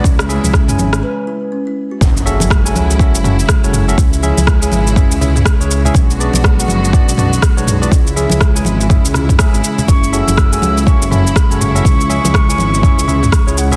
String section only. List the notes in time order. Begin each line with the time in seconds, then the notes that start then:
0.04 C#3 E3 G#3 E4
2.01 C#3 F#3 E4
3.97 C#3 E3 G#3 E4
5.95 D3 F#3 B3 F#4
7.92 C#3 E3 G#3 E4
9.88 F#3
11.85 E3 G#3